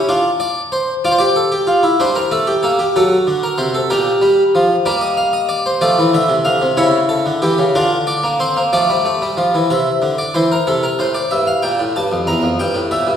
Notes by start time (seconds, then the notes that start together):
0.09 D4 F4
0.40 D5
0.72 C5
1.05 F4 D5
1.11 C5
1.18 G4 D5
1.36 A4
1.52 G4
1.67 F4
1.83 E4
2.00 G3 D4 C5
2.15 A#4
2.31 A3 A4
2.47 G4
2.63 A#3 A4
2.79 G4
2.96 F#3 F#4 A4
3.27 D3
3.43 A#4
3.58 C3 C5
3.74 A4
3.90 A#2 G4 A#4
4.21 G3
4.55 F3
4.86 G3 A#3 D5
5.01 D#5
5.17 F5
5.33 D#5
5.49 D5
5.66 C5
5.81 F3 A3 D5
5.98 E3
6.14 D3 E5
6.29 C3
6.45 D3 F5
6.62 C3
6.77 C#3 E4 C#5
7.09 A4
7.26 D3
7.42 E3 G4
7.58 C#3
7.75 D3 D4 F4
8.07 D5
8.23 A#3
8.40 C4 C5
8.57 A#3
8.73 F3 A3 D5
8.90 G3
9.05 A3
9.22 G3
9.37 F3
9.55 E3
9.70 C3 E5
10.02 D3
10.18 D5
10.34 E3 C5
10.52 A#4
10.67 C3 A4
10.83 A#4
10.99 A2 C5
11.14 D5
11.31 G2 E5
11.47 F5
11.62 A#2 G5
11.80 A2
11.96 G2 A5
12.12 F2
12.27 E2 A#5
12.43 F2
12.59 G2 G5
12.74 A2
12.91 A#2 E5
13.07 G2